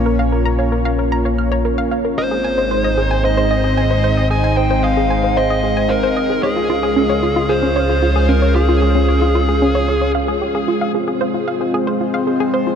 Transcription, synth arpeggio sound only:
X:1
M:4/4
L:1/16
Q:1/4=113
K:Fm
V:1 name="Synth arpeggio sound"
B f B b d B f B b d f' d B f f B | e A a c c e A a c c e A a c c e | A a c c e A a c c e A a c c e A | d F F A D d F F A D d F F A D d |
F F A D d F F A D d d d f A G A | F f A A c F f A A c F f A A c F |]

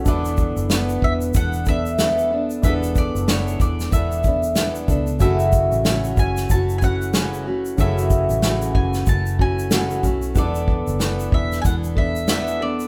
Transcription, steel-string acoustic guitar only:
X:1
M:4/4
L:1/8
Q:"Swing 16ths" 1/4=93
K:Emix
V:1 name="Steel-string acoustic guitar"
[E,B,DA]2 [E,B,DA]2 [E,B,DA] [B,DA] [E,B,DA] [B,DA] | [E,B,DA]2 [E,B,DA]2 [E,B,DA] [B,DA] [E,B,DA] [B,DA] | [F,,C,E,A,CF]2 [F,,C,E,A,CF]2 [E,A,CF] [E,A,CF] [F,,C,E,A,CF] [E,A,CF] | [F,,C,E,A,CF]2 [F,,C,E,A,CF]2 [E,A,CF] [E,A,CF] [F,,C,E,A,CF] [E,A,CF] |
[E,B,DA]2 [E,B,DA]2 [E,B,DA] [B,DA] [E,B,DA] [B,DA] |]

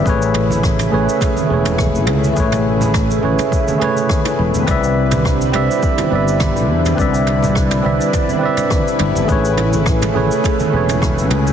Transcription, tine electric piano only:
X:1
M:4/4
L:1/16
Q:"Swing 16ths" 1/4=104
K:A
V:1 name="Tine electric piano"
[A,GBc]6 [A,GBc]4 [A,GBc]6 | [A,GBc]6 [A,GBc] z3 [A,GBc]6 | [=CBde]6 [CBde]4 [CBde]6 | [=CBde]6 [CBde] z3 [CBde]6 |
[A,GBc]6 [A,GBc]4 [A,GBc]6 |]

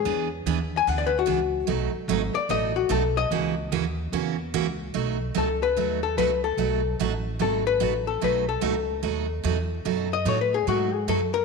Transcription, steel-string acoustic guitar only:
X:1
M:4/4
L:1/8
Q:"Swing" 1/4=147
K:Bmix
V:1 name="Steel-string acoustic guitar"
[E,B,=DG] z [E,B,DG] z [E,B,DG] z [E,B,DG] z | [B,,F,A,DF] z [B,,F,A,DF] z [B,,F,A,DF] z [B,,F,A,DF] z | [C,E,^A,CF] z [C,E,A,CF] z [C,E,A,CF] z [C,E,A,CF] z | [B,,F,A,DF] z [B,,F,A,DF] z [B,,F,A,DF] z [B,,F,A,DF] z |
[B,,F,A,DF] z [B,,F,A,DF] z [B,,F,A,DF] z [B,,F,A,DF] z | [B,,F,A,DF] z [B,,F,A,DF] z [B,,F,A,DF] z [B,,F,A,DF] z | [B,,F,A,DF] z [B,,F,A,DF] z [B,,F,A,DF] z [B,,F,A,DF] z |]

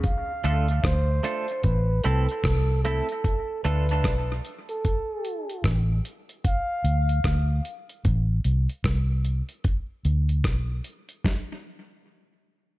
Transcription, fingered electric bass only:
X:1
M:4/4
L:1/16
Q:"Swing 16ths" 1/4=75
K:Ddor
V:1 name="Fingered electric bass" clef=bass
z2 D,,2 D,,2 z2 A,,,2 C,, z C,,3 z | z2 D,,2 B,,,2 z6 A,,,2 z2 | z2 D,,2 D,,2 z2 A,,,2 C,, z C,,3 z | z2 D,,2 B,,,2 z8 z2 |]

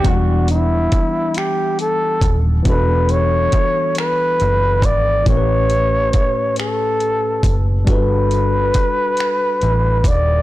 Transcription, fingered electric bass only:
X:1
M:6/8
L:1/8
Q:3/8=46
K:Edor
V:1 name="Fingered electric bass" clef=bass
E,,,2 z3 ^D,,, | E,,,2 z2 F,,, ^G,,, | A,,,2 z3 F,,, | G,,,2 z2 A,,, ^D,,, |]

